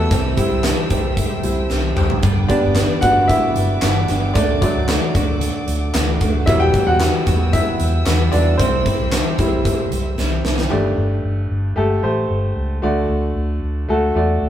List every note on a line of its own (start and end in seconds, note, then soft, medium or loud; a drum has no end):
0.00 0.13 F#3 soft
0.00 0.10 G3 medium
0.00 0.14 G3 soft
0.00 0.61 A3 medium
0.00 0.12 B3 medium
0.00 0.14 B3 medium
0.00 0.13 D4 medium
0.00 0.13 E4 medium
0.00 0.11 F#4 medium
0.00 0.14 F#4 medium
0.00 0.60 A4 medium
0.00 0.13 B4 medium
0.00 0.13 D5 medium
0.00 0.13 E5 medium
0.00 0.13 F#5 medium
0.00 2.20 E6 medium
0.10 0.33 C2 medium
0.10 0.38 C3 medium
0.10 0.38 E3 medium
0.10 0.38 G3 medium
0.10 0.37 C4 medium
0.10 0.35 G4 medium
0.10 2.21 C5 medium
0.10 2.21 E5 medium
0.10 4.31 G5 medium
0.10 kick loud
0.10 closed hi-hat medium
0.10 tambourine soft
0.37 0.73 G3 medium
0.37 0.63 G3 soft
0.37 0.73 C4 soft
0.37 0.64 C4 medium
0.37 0.73 E4 medium
0.37 0.64 G4 medium
0.37 kick medium
0.37 closed hi-hat medium
0.37 tambourine soft
0.51 0.73 C2 medium
0.63 0.91 E3 medium
0.63 0.91 G3 medium
0.63 0.90 C4 medium
0.63 0.89 G4 medium
0.63 snare loud
0.63 clap medium
0.63 closed hi-hat medium
0.63 tambourine medium
0.90 1.23 C2 medium
0.90 1.70 G3 soft
0.90 1.70 C4 medium
0.90 1.71 G4 medium
0.90 kick medium
0.90 closed hi-hat medium
0.90 tambourine soft
1.17 kick medium
1.17 closed hi-hat medium
1.17 tambourine soft
1.43 1.66 C2 medium
1.43 1.67 G3 soft
1.43 1.68 C4 soft
1.43 1.68 E4 soft
1.43 closed hi-hat medium
1.43 tambourine soft
1.70 1.92 C2 medium
1.70 1.97 E3 medium
1.70 1.97 G3 medium
1.70 1.96 C4 medium
1.70 1.95 G4 medium
1.70 snare medium
1.70 tambourine medium
1.96 2.19 C2 medium
1.96 2.22 G3 soft
1.96 2.23 C4 soft
1.96 2.23 G4 medium
1.96 mid tom medium
1.96 tambourine soft
2.10 floor tom medium
2.22 2.45 G1 medium
2.22 2.50 G2 medium
2.22 2.50 D3 medium
2.22 2.50 G3 medium
2.22 2.49 B3 medium
2.22 2.48 D4 medium
2.22 2.48 G4 medium
2.22 4.33 B4 medium
2.22 6.43 D5 medium
2.22 6.43 D6 medium
2.22 kick loud
2.22 closed hi-hat medium
2.22 tambourine soft
2.48 2.85 G3 medium
2.48 2.75 G3 soft
2.48 2.85 B3 soft
2.48 2.76 B3 soft
2.48 2.76 D4 medium
2.48 3.00 D4 medium
2.48 2.76 G4 medium
2.48 3.04 D5 medium
2.48 kick medium
2.48 closed hi-hat medium
2.48 tambourine soft
2.63 2.85 G1 medium
2.75 3.03 G3 medium
2.75 3.03 B3 medium
2.75 3.02 D4 medium
2.75 3.01 G4 medium
2.75 snare medium
2.75 clap medium
2.75 closed hi-hat medium
2.75 tambourine medium
3.01 3.35 G1 medium
3.01 3.81 G3 soft
3.01 3.82 B3 medium
3.01 3.84 D4 medium
3.01 3.28 F#4 medium
3.01 3.82 G4 medium
3.01 3.30 F#5 loud
3.01 kick medium
3.01 closed hi-hat medium
3.01 tambourine soft
3.28 4.32 E4 medium
3.28 4.38 E5 medium
3.28 kick medium
3.28 closed hi-hat medium
3.28 tambourine soft
3.56 3.78 G1 medium
3.56 closed hi-hat medium
3.56 tambourine soft
3.81 4.04 G1 medium
3.81 4.09 G3 medium
3.81 4.09 B3 medium
3.81 4.09 D4 medium
3.81 4.08 G4 medium
3.81 snare loud
3.81 clap medium
3.81 closed hi-hat medium
3.81 tambourine medium
4.08 4.31 G1 medium
4.08 4.35 G3 soft
4.08 4.36 B3 soft
4.08 4.35 D4 soft
4.08 4.36 G4 medium
4.08 snare soft
4.08 closed hi-hat medium
4.08 tambourine soft
4.34 4.57 D2 medium
4.34 4.62 D3 medium
4.34 4.62 A3 medium
4.34 4.60 D4 medium
4.34 4.62 D4 medium
4.34 4.61 F#4 medium
4.34 6.45 A4 medium
4.34 4.60 D5 medium
4.34 8.55 F#5 medium
4.34 kick loud
4.34 closed hi-hat medium
4.34 tambourine soft
4.61 5.37 F#3 medium
4.61 5.38 A3 soft
4.61 4.88 A3 soft
4.61 6.17 D4 medium
4.61 4.89 D4 medium
4.61 4.89 F#4 medium
4.61 6.17 D5 medium
4.61 kick medium
4.61 closed hi-hat medium
4.61 tambourine soft
4.75 4.97 D2 medium
4.88 5.15 D3 medium
4.88 5.15 A3 medium
4.88 5.15 D4 medium
4.88 5.14 F#4 medium
4.88 snare loud
4.88 clap medium
4.88 closed hi-hat medium
4.88 tambourine medium
5.15 5.48 D2 medium
5.15 5.94 A3 soft
5.15 5.95 D4 medium
5.15 5.96 F#4 medium
5.15 kick medium
5.15 closed hi-hat medium
5.15 tambourine soft
5.41 closed hi-hat medium
5.41 tambourine soft
5.68 5.90 D2 medium
5.68 closed hi-hat medium
5.68 tambourine soft
5.94 6.16 D2 loud
5.94 6.21 D3 medium
5.94 6.22 A3 medium
5.94 6.21 D4 medium
5.94 6.20 F#4 medium
5.94 snare loud
5.94 clap medium
5.94 closed hi-hat medium
5.94 tambourine medium
6.21 6.43 D2 loud
6.21 6.48 A3 soft
6.21 6.48 D4 soft
6.21 6.47 F#4 medium
6.21 kick medium
6.21 closed hi-hat medium
6.21 tambourine soft
6.46 6.74 E2 medium
6.46 6.69 E2 medium
6.46 6.74 B2 medium
6.46 6.75 E3 medium
6.46 6.82 F#3 medium
6.46 6.82 G3 soft
6.46 6.74 G3 medium
6.46 6.74 B3 medium
6.46 6.60 E4 medium
6.46 6.73 F#4 medium
6.46 8.57 B4 medium
6.46 6.61 E5 medium
6.46 10.67 E6 medium
6.46 kick loud
6.46 closed hi-hat medium
6.46 tambourine soft
6.60 6.85 G4 medium
6.60 6.85 G5 medium
6.74 6.99 E3 soft
6.74 7.00 G3 medium
6.74 7.01 B3 medium
6.74 7.01 F#4 medium
6.74 kick medium
6.74 closed hi-hat medium
6.74 tambourine soft
6.87 7.09 E2 medium
6.87 7.50 F#4 medium
6.87 7.55 F#5 medium
7.00 7.27 E3 medium
7.00 7.27 G3 medium
7.00 7.26 B3 medium
7.00 7.25 F#4 medium
7.00 snare medium
7.00 clap medium
7.00 closed hi-hat medium
7.00 tambourine medium
7.27 7.59 E2 medium
7.27 8.06 E3 soft
7.27 8.07 G3 medium
7.27 8.07 B3 medium
7.27 8.06 F#4 medium
7.27 kick medium
7.27 closed hi-hat medium
7.27 tambourine soft
7.53 8.29 E4 medium
7.53 8.35 E5 medium
7.53 kick medium
7.53 closed hi-hat medium
7.53 tambourine soft
7.80 8.02 E2 loud
7.80 closed hi-hat medium
7.80 tambourine soft
8.06 8.28 E2 loud
8.06 8.33 E3 medium
8.06 8.33 G3 medium
8.06 8.32 B3 medium
8.06 8.31 F#4 medium
8.06 snare loud
8.06 clap medium
8.06 closed hi-hat medium
8.06 tambourine medium
8.32 8.55 E2 medium
8.32 8.59 E3 medium
8.32 8.59 G3 soft
8.32 8.60 B3 medium
8.32 8.58 D4 medium
8.32 8.59 F#4 medium
8.32 8.60 D5 medium
8.32 closed hi-hat medium
8.32 tambourine soft
8.58 8.81 C2 loud
8.58 8.86 C3 medium
8.58 8.86 E3 medium
8.58 8.86 G3 medium
8.58 9.38 C4 medium
8.58 8.86 C4 medium
8.58 8.85 E4 medium
8.58 10.40 C5 medium
8.58 10.70 C5 medium
8.58 10.69 E5 medium
8.58 kick loud
8.58 closed hi-hat medium
8.58 tambourine soft
8.86 9.12 G3 soft
8.86 9.12 C4 soft
8.86 9.12 E4 medium
8.86 kick medium
8.86 closed hi-hat medium
8.86 tambourine soft
8.99 9.21 C2 medium
9.12 9.39 E3 medium
9.12 9.39 G3 medium
9.12 9.38 C4 medium
9.12 9.37 E4 medium
9.12 snare loud
9.12 clap medium
9.12 closed hi-hat medium
9.12 tambourine medium
9.38 9.71 C2 medium
9.38 10.14 G3 medium
9.38 10.18 G3 soft
9.38 10.14 C4 soft
9.38 10.18 C4 medium
9.38 10.18 E4 medium
9.38 10.15 E4 medium
9.38 kick medium
9.38 closed hi-hat medium
9.38 tambourine soft
9.65 kick medium
9.65 closed hi-hat medium
9.65 tambourine soft
9.92 10.13 C2 medium
9.92 closed hi-hat medium
9.92 tambourine soft
10.18 10.40 C2 medium
10.18 10.44 E3 medium
10.18 10.45 G3 medium
10.18 10.45 C4 medium
10.18 10.43 E4 medium
10.18 snare medium
10.18 tambourine medium
10.44 10.66 C2 medium
10.44 10.72 G3 soft
10.44 10.72 C4 soft
10.44 10.71 E4 medium
10.44 snare medium
10.44 tambourine soft
10.58 snare medium
10.70 10.93 G1 medium
10.70 11.46 G2 medium
10.70 11.47 A3 medium
10.70 11.47 G4 medium
10.70 11.48 D5 medium
10.97 11.19 G1 medium
11.24 11.45 G1 medium
11.50 11.72 G1 medium
11.76 11.99 G1 medium
11.76 11.96 A3 medium
11.76 11.96 G4 medium
11.76 11.96 A4 medium
12.03 12.25 A1 medium
12.03 12.61 A3 medium
12.03 12.61 G4 medium
12.03 12.61 C5 medium
12.30 12.52 G1 medium
12.57 12.78 C#2 medium
12.82 13.05 D2 medium
12.82 13.58 D3 medium
12.82 13.59 A3 medium
12.82 13.59 F#4 medium
12.82 13.60 D5 medium
13.09 13.31 D2 medium
13.36 13.58 D2 medium
13.62 13.84 D2 medium
13.89 14.11 D2 medium
13.89 14.08 A3 medium
13.89 14.08 F#4 medium
13.89 14.09 A4 medium
14.15 14.37 E2 medium
14.15 14.49 A3 medium
14.15 14.49 F#4 medium
14.15 14.49 D5 medium
14.42 14.49 D2 medium